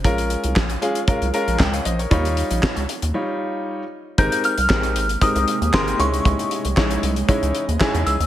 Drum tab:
HH |xxxx-xxxxxxx-xxx|xxxx-xxx--------|xxxx-xxxxxxx-xxx|xxxx-xxxxxxx-xxx|
CP |----x-------x---|----x-----------|----x-------x---|----x-------x---|
SD |----o-------o---|----o-----------|----o-------o---|----o-------o---|
BD |o---o---o---o---|o---o-----------|o---o---o---o---|o---o---o---o---|